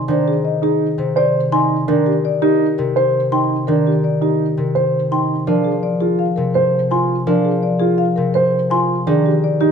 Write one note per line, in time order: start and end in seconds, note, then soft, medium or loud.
0.00 0.97 C3 soft
0.08 1.87 D#3 medium
0.08 0.32 D4 medium
0.08 0.33 C5 medium
0.28 0.50 G#4 medium
0.45 0.68 D#5 medium
0.62 0.86 D#4 medium
0.62 0.86 G#4 medium
0.98 1.89 C3 medium
0.98 1.22 C5 medium
1.16 1.40 C5 medium
1.16 1.40 D5 medium
1.52 1.76 D#4 medium
1.52 1.76 G#5 medium
1.52 1.76 C6 medium
1.88 3.67 D#3 medium
1.88 2.11 D4 medium
1.88 2.12 A#4 medium
2.06 2.30 G4 medium
2.25 2.48 D5 medium
2.42 2.65 D#4 medium
2.42 2.66 G4 medium
2.78 4.56 C3 medium
2.78 3.01 A#4 medium
2.96 3.19 C5 medium
2.96 3.20 C5 medium
3.32 3.55 D#4 medium
3.32 3.56 G5 medium
3.32 3.55 C6 medium
3.67 5.49 D#3 medium
3.67 3.91 D4 medium
3.67 3.91 A#4 medium
3.87 4.10 G4 medium
4.04 4.27 D5 medium
4.21 4.45 D#4 medium
4.21 4.45 G4 medium
4.57 5.49 C3 soft
4.57 4.81 A#4 soft
4.75 4.99 C5 medium
5.11 5.35 D#4 medium
5.11 5.35 G5 soft
5.11 5.35 C6 medium
5.47 7.26 F3 medium
5.47 5.71 D4 medium
5.47 5.71 A#4 medium
5.64 5.88 G#4 medium
5.83 6.07 D5 medium
6.01 6.25 F4 medium
6.01 6.25 G#4 medium
6.19 6.43 F5 medium
6.36 8.16 C3 soft
6.36 6.60 A#4 medium
6.54 6.78 C5 medium
6.54 6.79 C5 medium
6.91 7.15 F4 medium
6.91 7.15 G#5 medium
6.91 7.15 C6 medium
7.27 9.08 F3 medium
7.27 7.51 D4 medium
7.27 7.50 A#4 medium
7.45 7.68 G#4 medium
7.63 7.86 D5 medium
7.79 8.04 F4 medium
7.79 8.04 G#4 medium
7.98 8.22 F5 medium
8.16 9.08 C3 medium
8.16 8.40 A#4 medium
8.34 8.58 C5 medium
8.70 8.94 F4 medium
8.70 8.94 G#5 medium
8.70 8.94 C6 medium
9.07 9.72 D#3 medium
9.07 9.30 D4 medium
9.07 9.30 G#4 medium
9.26 9.48 G4 medium
9.44 9.67 D5 medium
9.61 9.72 D#4 medium
9.61 9.72 G4 medium